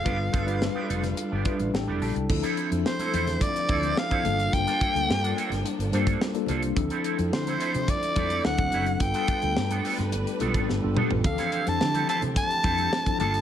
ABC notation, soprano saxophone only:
X:1
M:4/4
L:1/16
Q:1/4=107
K:Dm
V:1 name="Soprano saxophone"
f12 z4 | z4 c4 d4 f4 | g8 z8 | z4 c4 d4 ^f3- f/2 f/2 |
g8 z8 | f3 a3 a2 a6 a2 |]